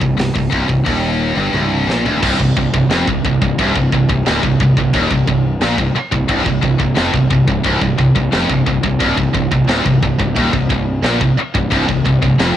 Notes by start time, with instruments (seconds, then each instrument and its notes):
0.00 fingered electric bass C1, distorted electric guitar C2, kick
0.17 fingered electric bass C1, distorted electric guitar C2, snare, open hi-hat
0.34 fingered electric bass C1, distorted electric guitar C2, kick
0.51 fingered electric bass C1, distorted electric guitar C2, kick
0.68 fingered electric bass C1, distorted electric guitar C2, kick
0.85 fingered electric bass D#1, distorted electric guitar D#2, kick, open hi-hat
1.36 fingered electric bass G1, distorted electric guitar G2
1.53 fingered electric bass C1, distorted electric guitar C2, high tom
1.87 fingered electric bass A#1, distorted electric guitar A#2, snare
2.05 fingered electric bass D1, distorted electric guitar D2, floor tom
2.22 fingered electric bass C1, distorted electric guitar C2, kick, crash
2.39 fingered electric bass C1, distorted electric guitar C2, kick
2.56 fingered electric bass C1, distorted electric guitar C2, kick
2.73 fingered electric bass C1, distorted electric guitar C2, kick
2.88 fingered electric bass F1, distorted electric guitar F2, snare, crash
3.07 fingered electric bass C1, distorted electric guitar C2, kick
3.24 fingered electric bass C1, distorted electric guitar C2, kick
3.41 fingered electric bass C1, distorted electric guitar C2, kick
3.59 fingered electric bass C1, distorted electric guitar C2, kick, crash
3.75 fingered electric bass C1, distorted electric guitar C2, kick
3.92 fingered electric bass C1, distorted electric guitar C2, kick
4.09 fingered electric bass C1, distorted electric guitar C2, kick
4.26 fingered electric bass D1, distorted electric guitar D2, snare, crash
4.43 fingered electric bass C1, distorted electric guitar C2, kick
4.60 fingered electric bass C1, distorted electric guitar C2, kick
4.77 fingered electric bass C1, distorted electric guitar C2, kick
4.93 fingered electric bass D#1, distorted electric guitar D#2, kick, crash
5.11 fingered electric bass C1, distorted electric guitar C2, kick
5.27 fingered electric bass C1, distorted electric guitar C2, kick
5.61 fingered electric bass A#1, distorted electric guitar A#2, snare, crash
5.78 fingered electric bass C1, distorted electric guitar C2, kick
5.95 muted distorted electric guitar stroke, muted fingered electric bass stroke
6.12 fingered electric bass C1, distorted electric guitar C2, kick
6.28 fingered electric bass C1, distorted electric guitar C2, kick, crash
6.45 fingered electric bass C1, distorted electric guitar C2, kick
6.62 fingered electric bass C1, distorted electric guitar C2, kick
6.79 fingered electric bass C1, distorted electric guitar C2, kick
6.95 fingered electric bass F1, distorted electric guitar F2, snare, crash
7.13 fingered electric bass C1, distorted electric guitar C2, kick
7.30 fingered electric bass C1, distorted electric guitar C2, kick
7.47 fingered electric bass C1, distorted electric guitar C2, kick
7.64 fingered electric bass C1, distorted electric guitar C2, kick, crash
7.81 fingered electric bass C1, distorted electric guitar C2, kick
7.98 fingered electric bass C1, distorted electric guitar C2, kick
8.15 fingered electric bass C1, distorted electric guitar C2, kick
8.32 fingered electric bass F1, distorted electric guitar F2, snare, crash
8.50 fingered electric bass C1, distorted electric guitar C2, kick
8.67 fingered electric bass C1, distorted electric guitar C2, kick
8.83 fingered electric bass C1, distorted electric guitar C2, kick
9.00 fingered electric bass C1, distorted electric guitar C2, kick, crash
9.17 fingered electric bass C1, distorted electric guitar C2, kick
9.34 fingered electric bass C1, distorted electric guitar C2, kick
9.52 fingered electric bass C1, distorted electric guitar C2, kick
9.68 fingered electric bass D1, distorted electric guitar D2, snare, crash
9.86 fingered electric bass C1, distorted electric guitar C2, kick
10.02 fingered electric bass C1, distorted electric guitar C2, kick
10.20 fingered electric bass C1, distorted electric guitar C2, kick
10.36 fingered electric bass D#1, distorted electric guitar D#2, kick, crash
10.53 fingered electric bass C1, distorted electric guitar C2, kick
10.70 fingered electric bass C1, distorted electric guitar C2, kick
11.03 fingered electric bass A#1, distorted electric guitar A#2, snare, crash
11.21 fingered electric bass C1, distorted electric guitar C2, kick
11.37 muted fingered electric bass stroke, muted distorted electric guitar stroke
11.55 fingered electric bass C1, distorted electric guitar C2, kick
11.71 fingered electric bass C1, distorted electric guitar C2, kick, crash
11.88 fingered electric bass C1, distorted electric guitar C2, kick
12.06 fingered electric bass C1, distorted electric guitar C2, kick
12.22 fingered electric bass C1, distorted electric guitar C2, kick
12.39 fingered electric bass F1, distorted electric guitar F2, snare, crash